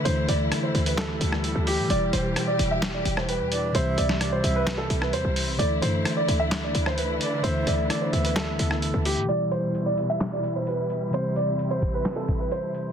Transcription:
Already playing: D3 E3 A3 E4 A4
0.03 D2 D3 E3 G3 A3 E4 C5, closed hi-hat
0.08 A4
0.28 D2 D5, closed hi-hat
0.52 cross-stick, closed hi-hat
0.63 C5
0.75 D2, closed hi-hat
0.86 B4, closed hi-hat
0.98 A4, snare, clap, closed hi-hat
1.21 D2, closed hi-hat
1.32 cross-stick
1.44 closed hi-hat
1.55 D2
1.67 G4, open hi-hat
1.79 A2
1.87 E1 B2 E3 G3 E4 G4 D5, closed hi-hat
1.92 G4
2.13 E1 C5, closed hi-hat
2.36 cross-stick, closed hi-hat
2.47 D5
2.59 E1, closed hi-hat
2.71 E5
2.82 snare, clap, closed hi-hat
2.94 D5
3.05 E1, closed hi-hat
3.17 C5, cross-stick
3.29 B4, closed hi-hat
3.40 E2
3.52 D5, closed hi-hat
3.72 C2 C3 E3 G3 C4 E4 C5 E5, closed hi-hat
3.77 G4
3.98 C2 D5, closed hi-hat
4.09 snare
4.21 D5, cross-stick, closed hi-hat
4.32 C5
4.44 C2 E5, closed hi-hat
4.56 B4
4.67 snare, clap, closed hi-hat
4.78 A4
4.90 C2, closed hi-hat
5.02 B4, cross-stick
5.13 E2 C5, closed hi-hat
5.25 C2
5.36 open hi-hat
5.48 B1
5.57 D2 D3 E3 A3 E4 D5, closed hi-hat
5.62 A4
5.82 F#2 C5, closed hi-hat
6.05 cross-stick, closed hi-hat
6.17 D5
6.28 D2, closed hi-hat
6.40 E5
6.52 snare, clap, closed hi-hat
6.64 D5
6.75 D2, closed hi-hat
6.86 C5, cross-stick
6.98 B4, closed hi-hat
7.21 D5, closed hi-hat
7.42 D2 D3 E3 A3 B3 E4 C5 E5, closed hi-hat
7.46 A4
7.67 D2 D5, closed hi-hat
7.90 D5, cross-stick, closed hi-hat
8.02 C5
8.12 D2 E5, closed hi-hat
8.25 B4, closed hi-hat
8.36 A4, snare, clap, closed hi-hat
8.59 D2, closed hi-hat
8.71 cross-stick
8.82 closed hi-hat
8.94 D2
9.05 G4, open hi-hat
9.17 A2
9.26 B2 E3 G3 E4 D5, closed hi-hat
9.31 G4
9.51 C5, closed hi-hat
9.75 closed hi-hat
9.86 D5
9.98 closed hi-hat
10.10 E5
10.21 snare, clap, closed hi-hat
10.33 D5
10.44 closed hi-hat
10.56 C5
10.67 B4, closed hi-hat
10.90 closed hi-hat
11.11 C3 E3 G3 C4 C5, closed hi-hat
11.15 G4
11.36 D5, closed hi-hat
11.59 closed hi-hat
11.71 C5
11.82 kick, closed hi-hat
11.94 B4
12.05 snare, clap, closed hi-hat
12.16 A4
12.28 kick, closed hi-hat
12.40 B4
12.51 C5, closed hi-hat
12.75 closed hi-hat

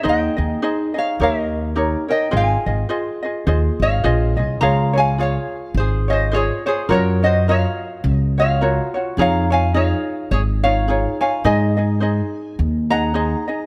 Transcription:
0.03 D#2 D#4 G#4 C5 D#5
0.09 D#5 G5
0.37 D#2 D#4 G#4 D#5
0.62 D#4 G#4 C5 D#5
0.94 D#4 G#4 D#5
0.98 C#5 F5
1.20 D#2 D#4 G4 A#4 C#5 E5
1.40 D#5
1.76 D#4 G4 A#4 C#5
2.08 D#4 A#4 C#5 D#5 G5
2.31 G#1 F4 G#4 C5 D#5
2.36 F5 G#5
2.66 G#1 F4 G#4 D#5
2.89 F4 G#4 C5 D#5
3.23 F4 G#4 D#5
3.47 D#2 F4 G#4 C5 D#5
3.80 G#1 C#5 F5
4.04 A#1 F4 G#4 C5 D#5
4.37 C2 F4 G#4 D#5
4.42 D#5
4.61 C#2 F4 G#4 C5 C#5 F5 A#5
4.93 F4 G#4 C#5
4.98 F5 G#5
5.18 F4 G#4 C#5 F5
5.22 C#5
5.74 G#1 C5
5.80 G#4
6.08 F4 G#4 C#5 D#5
6.13 C5
6.32 F4 G#4 C5 C#5
6.36 G#4
6.66 F4 G#4 C5 C#5
6.89 F#2 F4 F#4 A#4 C#5
6.94 A#4
7.23 F4 F#4 C5 C#5 D#5
7.48 F4 F#4 A#4 C#5 F5
8.04 C#2
8.15 D#5
8.38 F4 F#4 C#5 F5
8.61 F4 F#4 A#4 C#5
8.94 F4 F#4 C#5
9.17 F2 D#4 F4 G#4 C#5 A#5
9.21 F5
9.50 D#4 F4 C#5 F5 G#5
9.74 D#4 F4 G#4 C#5 F5
10.31 G#1 G#4 C#5
10.64 D#4 F4 C#5 F5
10.88 D#4 F4 G#4 C#5
11.21 D#4 F4 C#5 F5 G#5
11.44 G#2 D#4 G#4 C5 D#5 G#5
11.77 D#4 G#4 D#5
12.00 D#4 G#4 C5 D#5
12.59 D#2
12.90 D#4 G#4 D#5 F#5 A#5
13.14 D#4 G#4 C5 D#5
13.48 D#4 G#4 D#5

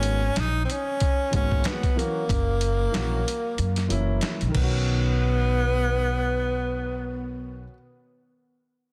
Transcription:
Already playing: G#1 D#3 G#3 A#3 B3 C#4 F#4
0.03 closed hi-hat
0.36 A#1 D#4, snare, closed hi-hat
0.65 C4
0.70 C#4, closed hi-hat
1.00 kick, closed hi-hat
1.31 G#1 D#3 G#3 A#3 B3, kick, closed hi-hat
1.35 C#4 F#4
1.51 kick
1.64 B3, snare, closed hi-hat
1.83 kick, closed hi-hat
1.96 E3 F#3 A#3 C#4 F#4, closed hi-hat
2.29 F#1, kick, closed hi-hat
2.61 closed hi-hat
2.92 A#1 E3 F#3 A#3 C#4, snare, closed hi-hat
2.96 F#4
3.28 closed hi-hat
3.58 F#2, closed hi-hat
3.76 snare, closed hi-hat
3.88 F#1 E3 F#3 A#3 C#4 E4, closed hi-hat
4.21 snare, closed hi-hat
4.41 A#1, closed hi-hat
4.48 D#3 A#4
4.55 B1 B3, kick, crash
4.59 C#4
4.64 F#4

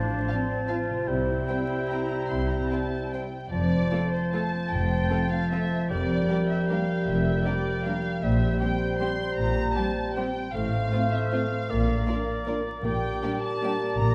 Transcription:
Already playing: A1 A2 F3 C4 D4 F4 A4 C5 F5 A5
0.27 F3 C4 C5 D5 F5 A5
0.67 F3 C4 F4 C5 F5 A5
0.90 C3
0.94 C4
0.98 G4
1.03 C5
1.07 C2 C3 G3 E4 C5 E5 G5
1.48 G3 C4 C5 G5
1.91 G3 C4 C5 G5 A#5
2.30 C2 C3 C6
2.50 A#5
2.70 G3 C4 C5 G5 A5
3.12 G3 C4 C5 G5
3.51 F1 F2 F3 C5 D5 A5
3.72 C4
3.91 A3 C4 F4 A4
4.13 C5
4.33 A3 C4 F4 A4 A5
4.53 C4
4.71 F1 F2 F3 G5
4.91 F4
5.10 A3 C4 F4 A4
5.31 C5 F5
5.51 A3 C4 F4 A4 E5
5.71 C4
5.90 F1 F2 F3 G3 A#4 D5 G5
6.09 D4
6.29 G3 A#3 D4 G4 A#4
6.49 A#4 E5
6.69 G3 A#3 D4 G4 A#4 F5
6.88 D4
7.07 F1 F2 F3 E5
7.26 F4
7.45 G3 A#3 D4 G4 A#4 D5
7.66 A#4
7.86 G3 A#3 D4 G4 A#4 F5
8.05 D4
8.23 A#1 A#2 G3 C5 E5 G5
8.41 C4
8.61 G3 C4 G4 C5 G5
8.81 C5
9.01 G3 C4 G4 C5 C6
9.20 C4
9.37 A#1 A#2 A#5
9.56 A#3
9.76 G3 C4 G4 C5 A5
9.97 C5
10.16 G3 C4 G4 C5 G5
10.36 C4
10.54 A1 A2 A3 C5 F5
10.73 C4
10.92 A3 C4 F4 C5
11.12 C5 E5
11.31 A3 C4 F4 C5 F5
11.51 C4
11.69 A#1 A#2 A#3 A#4 D5
11.88 D4
12.07 A#3 D4 F4 A#4 D5
12.27 A#4
12.47 A#3 D4 F4 A#4 D5
12.66 D4
12.84 A#1 A#2 A#3 G4 D5 G5
13.03 D4
13.22 G3 A#3 D4 G4 D5
13.42 G4 A5
13.62 G3 A#3 D4 G4 D5
13.81 A#3
13.99 A#1 A#2 A#5

